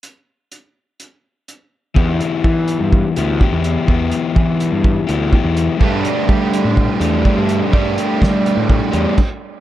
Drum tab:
CC |--------|--------|--------|--------|
HH |x-x-x-x-|-x-x-x-x|-x-x-x-x|-x-x-x-x|
SD |--------|--------|--------|--------|
BD |--------|o-o-o-o-|o-o-o-o-|o-o-o-o-|

CC |------x-|
HH |-x-x-x--|
SD |--o-----|
BD |o-o-o-o-|